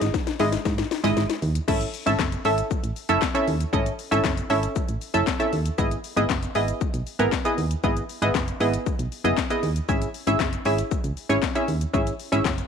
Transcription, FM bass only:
0.01 G#1
0.40 G#1
0.66 G#2
1.04 G#1
1.17 G#1
1.42 D#2
1.68 G#1
2.07 G#1
2.19 F#1
2.45 G#1
2.84 A1
3.09 F#1
3.48 D#2
3.73 G#1
4.12 G#1
4.24 F#1
4.50 G#1
4.89 A1
5.14 F#1
5.53 D#2
5.78 G#1
6.17 G#1
6.30 F#1
6.55 G#1
6.94 B1
7.19 G#1
7.58 D#2
7.84 G#1
8.22 G#1
8.35 F#1
8.60 G#1
8.99 B1
9.24 F#1
9.63 D#2
9.89 G#1
10.27 G#1
10.40 F#1
10.66 G#1
11.04 C#2
11.30 G#1
11.68 D#2
11.94 G#1
12.32 G#1
12.45 F#1

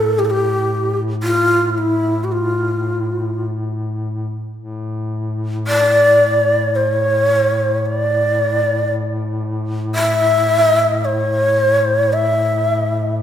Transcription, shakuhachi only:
Already playing: A4
0.19 G4
0.25 A4
0.30 G4
1.23 F4
1.78 E4
2.24 G4
2.32 F4
5.67 D5
6.75 C#5
7.86 D5
9.95 E5
11.05 C#5
12.13 E5

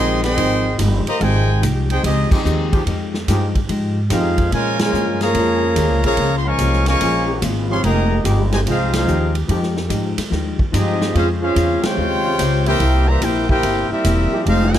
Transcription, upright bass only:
Already playing: A#1
0.37 G#1
0.79 G1
1.07 muted upright bass stroke
1.21 G#1
1.62 C2
2.03 C#2
2.45 D#2
2.86 F2
3.28 G2
3.69 G#2
4.10 F2
4.52 A#2
4.93 G2
5.34 F2
5.76 D#2
5.90 C#2
6.03 A#1
6.17 C#2
6.59 C2
7.00 A#1
7.42 G#1
7.83 F1
8.24 G1
8.66 C2
9.07 D#2
9.48 F2
9.90 G#2
10.17 muted upright bass stroke
10.31 D#2
10.73 G2
11.15 F2
11.56 E2
11.83 muted upright bass stroke
11.97 D#2
12.39 C#2
12.80 C2
13.21 A#1
13.63 G1
13.90 muted upright bass stroke
14.05 E1
14.32 muted upright bass stroke
14.46 F1

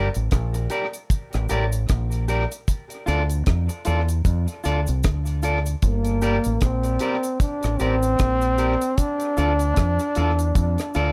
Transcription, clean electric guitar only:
0.55 muted clean electric guitar stroke
0.70 G4 A#4 D5
1.49 G4 A#4 D5
2.28 G4 A#4 D5
3.06 F4 A4 D5
3.69 muted clean electric guitar stroke
3.85 F4 A4 D5
4.64 F4 A4 D5
5.43 F4 A4 D5
6.22 G4 A#4 D5
6.85 muted clean electric guitar stroke
7.01 G4 A#4 D5
7.80 G4 A#4 D5
8.58 G4 A#4 D5
9.37 F4 A4 D5
10.00 muted clean electric guitar stroke
10.16 F4 A4 D5
10.95 F4 A4 D5

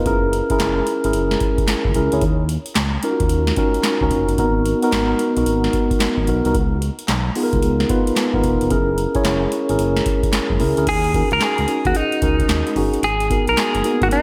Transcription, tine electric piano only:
Already playing: F4 B4
0.06 C#4 E4 G#4 A#4
0.50 C#4 E4 G#4 A#4
1.04 C#4 E4 G#4 A#4
1.95 C#4 E4 G#4 A#4
2.13 C#4 E4 G#4 C#5
3.04 C#4 D#4 F4 A#4
3.11 F#4
3.57 C#4 D#4 F#4 A#4
4.02 C#4 D#4 F#4 A#4
4.38 B3 D#4 F#4 A#4
4.83 B3 D#4 F#4 A#4
5.37 B3 D#4 F#4 A#4
6.28 B3 D#4 F#4 A#4
6.45 B3 D#4 F#4 A#4
7.36 B3 D#4 F4 G#4
7.43 A#4
7.89 B3 D#4 F4 B4
8.34 B3 D#4 F4 A#4
8.70 C#4 E4 G#4 A#4
9.15 C#4 E4 G#4 C#5
9.69 C#4 E4 G#4 A#4
10.60 C#4 E4 G#4 A#4
10.77 C#4 E4 G#4 A#4
11.14 C#4 D#4 F#4 A#4
11.68 C#4 D#4 F#4 G#4
12.22 C#4 D#4 F#4 A#4
12.76 C#4 D#4 F#4 G#4
13.30 B3 D#4 F#4 A#4
13.84 A#3 D#4 F#4 A#4
13.91 B3

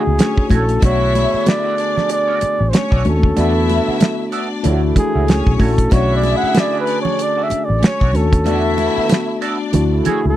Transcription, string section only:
0.18 C#4 C#5
0.81 E4 E5
1.78 D4 D5
2.72 C#4 C#5
3.37 E4 E5
4.33 D4 D5
5.28 C#4 C#5
5.92 E4 E5
6.88 D4 D5
7.81 C#4 C#5
8.46 E4 E5
9.42 D4 D5

